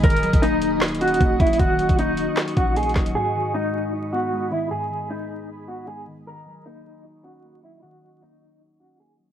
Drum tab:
HH |x-x-x-x--x--x-----x-----x-x-x-x-x-x-x-----x-x-x-|x-----x--x--x-----x-----x--x--x-----x-x-x-x--x--|------------------------------------------------|------------------------------------------------|
CP |------------------------x-----------------------|------------------------x-----------------x-----|------------------------------------------------|------------------------------------------------|
SD |------------------------o-----------------------|------------------------o-----------------o-----|------------------------------------------------|------------------------------------------------|
BD |o--------o--------------------------o-----o-----|o--------o--------------------o-----------o-----|------------------------------------------------|------------------------------------------------|

HH |------------------------------------------------|------------------------------------------------|
CP |------------------------------------------------|------------------------------------------------|
SD |------------------------------------------------|------------------------------------------------|
BD |------------------------------------------------|------------------------------------------------|